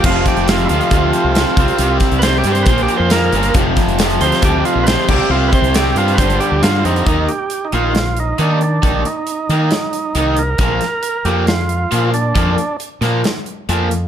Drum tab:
CC |x---------------|----------------|--------------x-|----------------|
HH |--xxxxxxx-x-x-xx|x-xxx-xxxxx-x-xx|x-xxxxxxx-x-x---|--xxx-xxxxx-x-xx|
SD |----o-------o---|--o-o-------o---|--o-o--o----o---|----o-------o---|
BD |o-o-----o-----o-|--o-----o-------|o-o-----o-----o-|--o-----o-------|

CC |----------------|----------------|----------------|----------------|
HH |x-x-x-x-x-x-x-x-|x-x-x-x-x-x-x-x-|x-x-x-x-x-x-x-x-|x-x-x-x-x-x-x-x-|
SD |--------o-------|--------o-------|--o-----o-------|------o-o-------|
BD |o---------------|o---------------|o---------------|o---------------|